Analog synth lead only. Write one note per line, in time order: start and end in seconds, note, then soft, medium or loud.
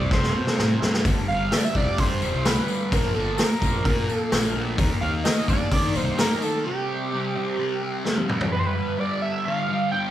0.00 0.14 D5 loud
0.13 0.82 C5 medium
1.28 1.54 F5 loud
1.52 1.59 E5 loud
1.58 1.66 D5 medium
1.64 1.78 E5 loud
1.76 2.01 D5 loud
2.00 2.48 C5 loud
2.46 2.94 B4 medium
2.93 3.16 A#4 medium
3.14 3.37 A4 medium
3.38 4.13 A#4 medium
4.13 4.51 A4 medium
5.01 5.12 F5 loud
5.24 5.46 D#5 loud
5.49 5.98 D5 medium
5.96 6.21 C5 medium
6.20 6.42 A#4 loud
6.43 6.64 A4 medium
6.66 8.25 G4 medium
8.52 8.60 B4 medium
8.59 8.68 C5 medium
8.66 9.01 B4 loud
9.00 9.21 D5 loud
9.22 9.44 E5 medium
9.45 9.89 F5 loud
9.92 10.02 G5 loud